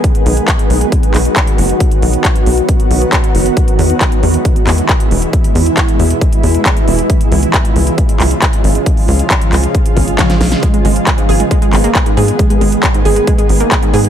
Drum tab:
HH |xxoxxxoxxxoxxxox|xxoxxxoxxxoxxxox|xxoxxxoxxxoxxxox|xxoxxxoxxxoxxxox|
CP |----x-----x-x---|----x-------x---|----x-----x-x---|----x-------x---|
SD |----------------|----------------|----------------|----------------|
BD |o---o---o---o---|o---o---o---o---|o---o---o---o---|o---o---o---o---|

HH |xxoxxxoxxxoxxxox|xooxxxoxxxoxxxox|xxoxxxoxxxoxxxox|xxoxxxoxxxoxxxox|
CP |----x-----x-x---|----x-x-----x---|----x-----x-x---|----x-------x---|
SD |----------------|------------oooo|----------------|----------------|
BD |o---o---o---o---|o---o---o-o-o---|o---o---o---o---|o---o---o---o---|